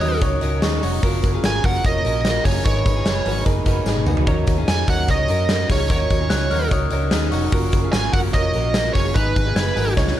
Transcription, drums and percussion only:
0.01 hi-hat pedal, open hi-hat, tambourine
0.21 kick, hi-hat pedal, open hi-hat, tambourine
0.41 hi-hat pedal, open hi-hat
0.62 snare, hi-hat pedal, open hi-hat, tambourine
0.83 hi-hat pedal, open hi-hat, tambourine
1.03 kick, hi-hat pedal, open hi-hat
1.22 kick, hi-hat pedal, open hi-hat, tambourine
1.44 snare, hi-hat pedal, open hi-hat, tambourine
1.64 kick, hi-hat pedal, open hi-hat, tambourine
1.84 kick, hi-hat pedal, open hi-hat, tambourine
2.05 hi-hat pedal, open hi-hat
2.25 snare, hi-hat pedal, open hi-hat, tambourine
2.45 kick, hi-hat pedal, open hi-hat, tambourine
2.66 kick, hi-hat pedal, open hi-hat
2.86 kick, hi-hat pedal, open hi-hat, tambourine
3.06 snare, hi-hat pedal, open hi-hat, tambourine
3.26 hi-hat pedal, open hi-hat, tambourine
3.46 kick, hi-hat pedal, open hi-hat, tambourine
3.66 kick, hi-hat pedal, open hi-hat, tambourine
3.86 snare, tambourine
3.96 high tom
4.06 mid tom, tambourine
4.17 floor tom
4.27 kick, hi-hat pedal, open hi-hat
4.47 kick, hi-hat pedal, open hi-hat, tambourine
4.68 snare, hi-hat pedal, open hi-hat, tambourine
4.88 kick, hi-hat pedal, open hi-hat, tambourine
5.08 kick, hi-hat pedal, open hi-hat, tambourine
5.28 hi-hat pedal, open hi-hat, tambourine
5.49 snare, hi-hat pedal, open hi-hat, tambourine
5.70 kick, hi-hat pedal, open hi-hat, tambourine
5.90 kick, hi-hat pedal, open hi-hat, tambourine
6.10 kick, hi-hat pedal, open hi-hat, tambourine
6.30 snare, hi-hat pedal, open hi-hat, tambourine
6.51 hi-hat pedal, open hi-hat, tambourine
6.71 kick, hi-hat pedal, open hi-hat, tambourine
6.91 hi-hat pedal, open hi-hat, tambourine
7.11 snare, hi-hat pedal, open hi-hat, tambourine
7.32 hi-hat pedal, open hi-hat, tambourine
7.52 kick, hi-hat pedal, open hi-hat, tambourine
7.72 kick, hi-hat pedal, open hi-hat, tambourine
7.93 snare, hi-hat pedal, open hi-hat, tambourine
8.13 kick, hi-hat pedal, open hi-hat, tambourine
8.33 kick, hi-hat pedal, open hi-hat, tambourine
8.54 hi-hat pedal, open hi-hat, tambourine
8.74 snare, hi-hat pedal, open hi-hat, tambourine
8.95 kick, hi-hat pedal, open hi-hat, tambourine
9.15 kick, hi-hat pedal, open hi-hat, tambourine
9.36 kick, hi-hat pedal, open hi-hat, tambourine
9.56 snare, hi-hat pedal, open hi-hat, tambourine
9.77 hi-hat pedal, open hi-hat, tambourine
9.97 kick, snare, tambourine
10.07 snare

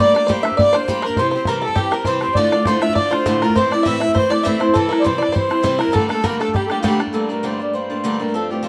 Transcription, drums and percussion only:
0.16 bodhran
0.30 bodhran
0.45 bodhran
0.52 bodhran
0.59 bodhran
0.75 bodhran
0.88 bodhran
1.03 bodhran
1.10 bodhran
1.16 bodhran
1.45 bodhran
1.69 bodhran
1.76 bodhran
1.92 bodhran
2.05 bodhran
2.21 bodhran
2.28 bodhran
2.35 bodhran
2.52 bodhran
2.65 bodhran
2.82 bodhran
2.89 bodhran
2.96 bodhran
3.13 bodhran
3.26 bodhran
3.42 bodhran
3.50 bodhran
3.56 bodhran
3.72 bodhran
3.86 bodhran
4.01 bodhran
4.09 bodhran
4.16 bodhran
4.32 bodhran
4.47 bodhran
4.61 bodhran
4.69 bodhran
4.76 bodhran
4.93 bodhran
5.06 bodhran
5.23 bodhran
5.29 bodhran
5.36 bodhran
5.51 bodhran
5.64 bodhran
5.81 bodhran
5.88 bodhran
5.96 bodhran
6.10 bodhran
6.24 bodhran
6.41 bodhran
6.49 bodhran
6.55 bodhran
6.70 bodhran
6.84 bodhran
7.00 bodhran
7.07 bodhran

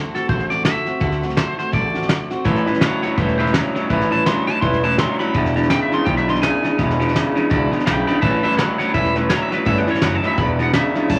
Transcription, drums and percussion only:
0.15 snare
0.29 kick, snare
0.40 snare
0.51 snare
0.65 snare, hi-hat pedal
0.86 snare
1.01 kick, snare
1.12 snare
1.23 snare
1.30 snare
1.37 snare, hi-hat pedal
1.59 snare
1.73 kick, snare
1.95 snare
2.02 snare
2.09 snare, hi-hat pedal
2.31 snare
2.45 kick, snare
2.56 snare
2.67 snare
2.74 snare
2.81 snare, hi-hat pedal
3.03 snare
3.18 kick, snare
3.29 snare
3.39 snare
3.47 snare
3.54 snare, hi-hat pedal
3.76 snare
3.90 kick, snare
4.01 snare
4.12 snare
4.26 snare, hi-hat pedal
4.48 snare
4.62 kick, snare
4.73 snare
4.84 snare
4.91 snare
4.98 snare, hi-hat pedal
5.20 snare
5.35 kick, snare
5.46 snare
5.56 snare
5.63 snare
5.70 snare, hi-hat pedal
5.92 snare
6.06 kick, snare
6.17 snare
6.29 snare
6.36 snare
6.43 snare, hi-hat pedal
6.64 snare
6.79 kick, snare
6.90 snare
7.01 snare
7.09 snare
7.16 snare, hi-hat pedal
7.37 snare
7.51 kick, snare
7.73 snare
7.80 snare
7.87 snare, hi-hat pedal
8.09 snare
8.23 kick, snare
8.44 snare
8.52 snare
8.59 snare, hi-hat pedal
8.80 snare
8.94 kick, snare
9.05 snare
9.15 snare
9.30 snare, hi-hat pedal
9.52 snare
9.66 kick, snare
9.77 snare
9.87 snare
9.95 snare
10.02 snare, hi-hat pedal
10.23 snare
10.38 kick, snare
10.59 snare
10.73 snare, hi-hat pedal
10.95 snare
11.09 kick, snare, crash

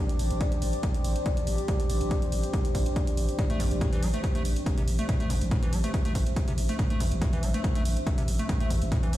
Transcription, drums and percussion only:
0.09 closed hi-hat
0.19 open hi-hat
0.31 closed hi-hat
0.41 kick, closed hi-hat
0.52 closed hi-hat
0.62 open hi-hat
0.73 closed hi-hat
0.83 kick, closed hi-hat
0.94 closed hi-hat
1.04 open hi-hat
1.16 closed hi-hat
1.26 kick, closed hi-hat
1.37 closed hi-hat
1.47 open hi-hat
1.58 closed hi-hat
1.68 kick, closed hi-hat
1.80 closed hi-hat
1.90 open hi-hat
2.01 closed hi-hat
2.11 kick, closed hi-hat
2.22 closed hi-hat
2.32 open hi-hat
2.44 closed hi-hat
2.53 kick, closed hi-hat
2.65 closed hi-hat
2.75 kick, open hi-hat
2.86 closed hi-hat
2.96 kick, closed hi-hat
3.07 closed hi-hat
3.17 open hi-hat
3.29 closed hi-hat
3.39 kick, closed hi-hat
3.50 closed hi-hat
3.60 open hi-hat
3.71 closed hi-hat
3.81 kick, closed hi-hat
3.93 closed hi-hat
4.03 open hi-hat
4.14 closed hi-hat
4.24 kick, closed hi-hat
4.35 closed hi-hat
4.45 open hi-hat
4.56 closed hi-hat
4.66 kick, closed hi-hat
4.78 closed hi-hat
4.88 open hi-hat
4.99 closed hi-hat
5.09 kick, closed hi-hat
5.20 closed hi-hat
5.30 open hi-hat
5.41 closed hi-hat
5.51 kick, closed hi-hat
5.63 closed hi-hat
5.73 open hi-hat
5.84 closed hi-hat
5.94 kick, closed hi-hat
6.05 closed hi-hat
6.15 kick, open hi-hat
6.26 closed hi-hat
6.36 kick, closed hi-hat
6.48 closed hi-hat
6.58 open hi-hat
6.69 closed hi-hat
6.79 kick, closed hi-hat
6.90 closed hi-hat
7.00 open hi-hat
7.12 closed hi-hat
7.22 kick, closed hi-hat
7.33 closed hi-hat
7.43 open hi-hat
7.54 closed hi-hat
7.64 kick, closed hi-hat
7.75 closed hi-hat
7.85 open hi-hat
7.97 closed hi-hat
8.07 kick, closed hi-hat
8.18 closed hi-hat
8.28 open hi-hat
8.39 closed hi-hat
8.49 kick, closed hi-hat
8.60 closed hi-hat
8.70 open hi-hat
8.82 closed hi-hat
8.92 kick, closed hi-hat
9.03 closed hi-hat
9.13 open hi-hat

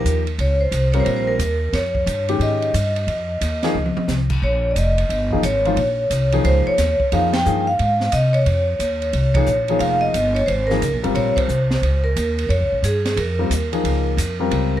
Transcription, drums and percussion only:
0.06 hi-hat pedal, ride
0.27 ride
0.39 ride
0.72 hi-hat pedal, ride
0.93 ride
1.06 ride
1.39 hi-hat pedal, ride
1.73 snare, ride
1.95 kick
2.07 hi-hat pedal, ride
2.28 ride
2.41 ride
2.62 ride
2.74 hi-hat pedal, ride
2.96 ride
3.08 ride
3.41 hi-hat pedal, ride
3.63 snare, ride
3.74 high tom
3.86 high tom
3.97 high tom
4.08 snare, hi-hat pedal
4.30 kick, crash
4.76 hi-hat pedal, ride
4.98 ride
5.10 ride
5.31 kick
5.43 hi-hat pedal, ride
5.65 ride
5.77 ride
6.11 hi-hat pedal, ride
6.32 ride
6.45 ride
6.78 snare, hi-hat pedal, ride
7.00 kick
7.12 ride
7.33 snare, ride
7.46 hi-hat pedal
7.79 ride
8.00 snare
8.12 hi-hat pedal, ride
8.34 ride
8.46 ride
8.80 hi-hat pedal, ride
9.02 ride
9.13 ride
9.35 kick, ride
9.46 hi-hat pedal
9.68 ride
9.80 ride
10.14 hi-hat pedal, ride
10.36 ride
10.48 ride
10.70 snare
10.82 hi-hat pedal, ride
11.04 ride
11.15 ride
11.37 kick, ride
11.49 hi-hat pedal
11.71 snare
11.83 ride
12.16 hi-hat pedal, ride
12.39 ride
12.50 ride
12.84 hi-hat pedal, ride
13.05 snare, ride
13.17 ride
13.51 hi-hat pedal, ride
13.73 ride
13.85 ride
14.18 hi-hat pedal, ride
14.51 ride

